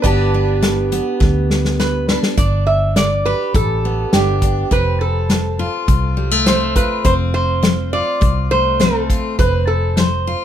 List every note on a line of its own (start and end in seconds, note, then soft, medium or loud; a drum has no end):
0.02 0.99 G1 medium
0.02 0.56 G2 medium
0.02 0.91 B3 medium
0.02 0.33 D4 medium
0.02 2.35 G4 medium
0.02 2.33 B4 medium
0.02 2.33 D5 medium
0.02 2.34 A5 medium
0.02 kick medium
0.02 closed hi-hat soft
0.34 2.08 D4 medium
0.62 1.15 D3 medium
0.62 snare loud
0.62 closed hi-hat medium
0.92 2.34 B3 medium
0.92 closed hi-hat medium
1.20 2.16 D2 medium
1.20 1.73 G2 medium
1.20 kick loud
1.20 snare medium
1.50 snare medium
1.65 snare medium
1.80 2.32 D3 medium
1.80 2.07 B4 medium
1.80 snare medium
2.08 2.35 D4 medium
2.08 2.16 B4 medium
2.08 snare loud
2.23 snare medium
2.37 3.33 G1 medium
2.37 2.90 G2 medium
2.37 4.13 D4 medium
2.37 2.66 D5 medium
2.37 kick loud
2.37 closed hi-hat medium
2.67 2.96 E5 medium
2.96 3.49 D3 medium
2.96 3.26 D5 medium
2.96 snare loud
2.96 closed hi-hat medium
3.26 4.68 G4 medium
3.26 3.55 B4 medium
3.54 4.04 A1 medium
3.54 4.07 G2 medium
3.54 4.13 A4 medium
3.54 kick loud
3.54 closed hi-hat medium
3.85 4.68 B3 medium
4.13 4.63 G1 medium
4.13 4.66 D3 medium
4.13 4.42 D4 medium
4.13 4.73 G4 medium
4.13 snare loud
4.13 closed hi-hat medium
4.42 4.68 D4 medium
4.42 kick medium
4.42 closed hi-hat medium
4.71 5.66 F1 medium
4.71 5.24 F2 medium
4.71 6.46 C4 medium
4.71 5.02 B4 medium
4.71 kick medium
4.71 closed hi-hat soft
5.01 6.51 A4 medium
5.30 5.82 F3 medium
5.30 snare loud
5.30 closed hi-hat medium
5.59 6.76 F4 medium
5.88 6.83 C2 medium
5.88 6.41 C3 medium
5.88 kick loud
5.88 closed hi-hat medium
6.17 6.31 G3 medium
6.31 7.05 A3 soft
6.46 6.99 F3 medium
6.46 7.05 C4 medium
6.46 6.76 C5 medium
6.46 snare loud
6.46 closed hi-hat medium
6.76 7.93 F4 medium
6.76 7.05 B4 medium
6.76 kick medium
6.76 closed hi-hat medium
7.05 8.00 F1 medium
7.05 7.57 F2 medium
7.05 8.79 C4 medium
7.05 7.13 C5 medium
7.05 kick medium
7.05 closed hi-hat medium
7.34 7.92 C5 medium
7.63 8.16 F3 medium
7.63 snare loud
7.63 closed hi-hat medium
7.93 9.09 F4 medium
7.93 8.51 D5 medium
8.21 9.17 C2 medium
8.21 8.74 C3 medium
8.21 kick loud
8.21 closed hi-hat medium
8.51 9.35 A3 medium
8.51 8.81 C5 loud
8.80 9.33 F3 medium
8.80 9.36 C4 medium
8.80 9.41 A4 medium
8.80 snare loud
8.80 closed hi-hat medium
9.10 9.36 F4 medium
9.10 kick medium
9.10 closed hi-hat medium
9.39 10.34 F1 medium
9.39 9.92 F2 medium
9.39 10.45 C4 medium
9.39 9.69 B4 medium
9.39 kick medium
9.39 closed hi-hat soft
9.67 9.98 A4 medium
9.97 10.45 F3 medium
9.97 10.45 C5 medium
9.97 snare loud
9.97 closed hi-hat medium
10.27 10.45 F4 medium